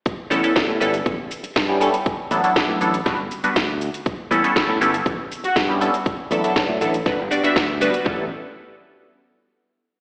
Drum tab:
HH |x-oxx-oxx-oxx-ox|x-oxx-oxx-oxx-ox|x-oxx-oxx-oxx-ox|x-oxx-oxx-oxx-ox|
SH |x-xx--xxx-xxx-xx|x-xx--xxx-xxx-xx|x-xxx-xxx-xxx-xx|x-xxx-xxx-xxx-xx|
SD |----o-------o---|----o---o---o---|----o-------o---|----o---o---o---|
BD |o---o---o---o---|o---o---o---o---|o---o---o---o---|o---o---o---o---|

HH |----------------|
SH |----------------|
SD |----------------|
BD |o---------------|